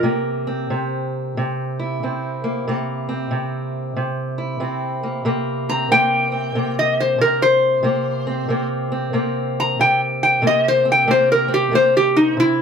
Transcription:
0.00 0.70 C3 medium
0.00 2.43 A#3 medium
0.00 2.73 A#4 medium
0.47 2.03 C4 medium
0.70 1.37 C3 medium
1.37 2.03 C3 medium
1.79 4.37 E4 medium
2.03 2.67 C3 medium
2.03 2.72 C4 soft
2.44 2.68 A#3 medium
2.68 3.30 C3 medium
2.68 5.02 A#3 medium
2.73 4.56 A4 medium
3.09 4.59 C4 medium
3.31 3.95 C3 medium
3.96 4.59 C3 medium
4.38 7.84 E4 medium
4.60 5.22 C3 medium
4.60 5.22 C4 medium
5.03 5.23 A#3 medium
5.25 5.91 C3 medium
5.25 5.91 A#3 medium
5.69 6.31 C4 medium
5.69 5.89 A#5 medium
5.91 6.55 C3 medium
5.91 6.55 A#3 medium
5.91 6.74 G5 medium
6.32 7.87 C4 medium
6.55 7.18 C3 medium
6.55 7.84 A#3 medium
6.79 6.98 D#5 medium
7.00 7.20 C5 medium
7.18 7.82 C3 medium
7.18 7.41 A#4 medium
7.42 8.67 C5 medium
7.83 8.48 C3 medium
7.83 8.50 A#3 medium
8.27 8.91 C4 medium
8.49 9.13 C3 medium
8.49 9.13 A#3 medium
8.92 10.46 C4 medium
9.13 9.79 C3 medium
9.13 10.42 A#3 medium
9.60 9.79 A#5 medium
9.79 10.41 C3 medium
9.79 10.00 G5 medium
10.23 10.43 G5 medium
10.42 11.07 C3 medium
10.42 11.08 A#3 medium
10.47 10.65 D#5 medium
10.68 10.87 C5 medium
10.85 11.48 C4 medium
10.92 11.09 G5 medium
11.07 11.71 C3 medium
11.07 11.72 A#3 medium
11.07 11.29 C5 medium
11.32 11.51 A#4 medium
11.48 12.62 C4 medium
11.54 11.72 G4 medium
11.71 12.35 C3 medium
11.71 12.62 A#3 medium
11.71 11.94 C5 medium
11.97 12.15 G4 medium
12.17 12.36 D#4 medium
12.37 12.62 C3 medium
12.37 12.62 E4 medium

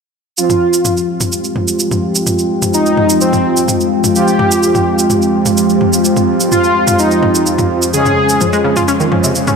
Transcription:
0.38 9.56 F2 medium
0.38 4.13 F3 medium
0.38 7.90 G#3 medium
0.38 4.13 C4 medium
0.38 1.23 F4 loud
0.38 8.88 F4 medium
0.38 4.13 F4 medium
0.38 7.90 F4 medium
0.38 4.12 G4 medium
0.38 shaker medium
0.50 mid tom medium
0.50 shaker soft
0.73 shaker medium
0.85 mid tom medium
0.85 shaker medium
0.96 9.56 G#3 medium
0.96 shaker soft
1.21 mid tom medium
1.21 shaker medium
1.32 shaker soft
1.42 9.17 G5 medium
1.42 shaker soft
1.56 mid tom medium
1.68 shaker medium
1.79 shaker medium
1.91 mid tom medium
1.91 shaker soft
2.15 shaker medium
2.27 mid tom medium
2.27 shaker soft
2.39 shaker soft
2.62 mid tom medium
2.62 shaker medium
2.74 3.17 D#4 medium
2.74 shaker medium
2.86 shaker soft
2.97 mid tom medium
3.09 shaker medium
3.21 3.65 C4 medium
3.21 shaker soft
3.33 mid tom medium
3.33 shaker soft
3.57 shaker medium
3.68 mid tom medium
3.68 shaker medium
3.80 shaker soft
4.04 mid tom medium
4.04 shaker medium
4.15 7.91 F3 medium
4.15 7.91 C4 medium
4.15 7.91 F4 medium
4.15 5.01 G4 loud
4.15 7.90 G4 medium
4.15 shaker soft
4.28 shaker soft
4.39 mid tom medium
4.51 shaker medium
4.63 shaker soft
4.75 mid tom medium
4.75 shaker soft
4.99 shaker medium
5.10 mid tom medium
5.10 shaker soft
5.22 shaker soft
5.46 mid tom medium
5.46 shaker medium
5.57 shaker medium
5.69 shaker soft
5.81 mid tom medium
5.93 shaker medium
6.04 shaker medium
6.17 mid tom medium
6.17 shaker soft
6.40 shaker medium
6.52 6.95 F4 medium
6.52 mid tom medium
6.52 shaker soft
6.64 shaker soft
6.87 mid tom medium
6.87 shaker medium
6.99 7.43 D#4 medium
6.99 shaker soft
7.11 shaker soft
7.23 mid tom medium
7.35 shaker medium
7.46 shaker soft
7.58 mid tom medium
7.58 shaker soft
7.82 shaker medium
7.93 9.56 C#3 medium
7.93 9.56 G#3 medium
7.93 9.56 C#4 medium
7.93 9.56 F4 medium
7.93 8.79 G#4 loud
7.93 9.56 C5 medium
7.93 shaker soft
8.06 8.12 C#3 medium
8.06 mid tom medium
8.06 shaker soft
8.29 9.56 C5 medium
8.29 shaker medium
8.36 9.56 F5 medium
8.41 8.47 F3 medium
8.41 mid tom medium
8.41 shaker soft
8.53 8.62 G#3 loud
8.53 shaker soft
8.64 8.71 C#3 medium
8.76 8.82 F4 loud
8.76 mid tom medium
8.76 shaker medium
8.88 8.94 C#4 medium
8.88 shaker soft
9.00 9.06 D#3 medium
9.00 shaker soft
9.12 9.21 F3 medium
9.12 mid tom medium
9.24 9.30 C3 medium
9.24 shaker medium
9.35 shaker medium
9.47 9.51 C#4 medium
9.47 mid tom medium
9.47 shaker soft

